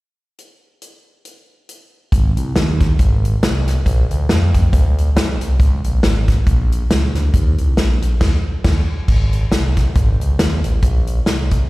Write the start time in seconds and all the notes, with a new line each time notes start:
0.38 closed hi-hat
0.82 closed hi-hat
1.25 closed hi-hat
1.69 closed hi-hat
2.12 G#1, kick, closed hi-hat
2.37 C2, closed hi-hat
2.55 D#2, snare, closed hi-hat
2.80 kick, snare, closed hi-hat
2.99 G#1, kick, closed hi-hat
3.25 closed hi-hat
3.42 C2, snare, closed hi-hat
3.67 snare, closed hi-hat
3.86 A#1, kick, closed hi-hat
4.10 D2, closed hi-hat
4.29 F2, snare, closed hi-hat
4.54 kick, closed hi-hat
4.73 D2, kick, closed hi-hat
4.98 closed hi-hat
5.16 B1, snare, closed hi-hat
5.41 C2, closed hi-hat
5.59 C#2, kick, closed hi-hat
5.84 A#1, closed hi-hat
6.02 G#1, snare, closed hi-hat
6.28 kick, snare, closed hi-hat
6.46 A#1, kick, closed hi-hat
6.72 closed hi-hat
6.90 C#2, snare, closed hi-hat
7.14 D2, snare, closed hi-hat
7.34 D#2, kick, closed hi-hat
7.58 C2, closed hi-hat
7.77 A#1, snare, closed hi-hat
8.02 closed hi-hat
8.21 D#2, kick, snare, crash
8.64 D#2, kick, snare, crash
9.08 G#1, kick, crash
9.33 closed hi-hat
9.52 C2, snare, closed hi-hat
9.77 kick, snare, closed hi-hat
9.95 G#1, kick, closed hi-hat
10.20 C#2, closed hi-hat
10.39 D#2, snare, closed hi-hat
10.64 A1, closed hi-hat
10.82 A#1, kick, closed hi-hat
11.07 closed hi-hat
11.26 C2, snare, closed hi-hat
11.51 kick, closed hi-hat